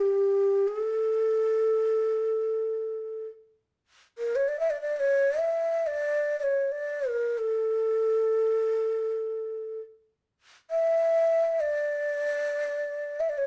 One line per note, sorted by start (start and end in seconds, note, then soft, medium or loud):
0.00 0.69 G4 medium
0.68 3.26 A4 medium
4.18 4.37 A#4 medium
4.35 4.50 C#5 medium
4.48 4.59 D5 medium
4.60 4.72 E5 medium
4.70 4.80 D5 medium
4.81 4.96 D5 medium
4.96 5.40 C#5 medium
4.96 5.01 D5 medium
5.39 5.88 E5 medium
5.87 6.39 D5 medium
6.39 6.73 C#5 medium
6.39 6.44 D5 medium
6.72 7.10 D5 medium
7.08 7.39 A#4 medium
7.38 9.80 A4 medium
10.70 11.62 E5 medium
11.60 13.21 D5 medium
13.20 13.31 E5 medium
13.29 13.39 D5 medium
13.38 13.47 C#5 medium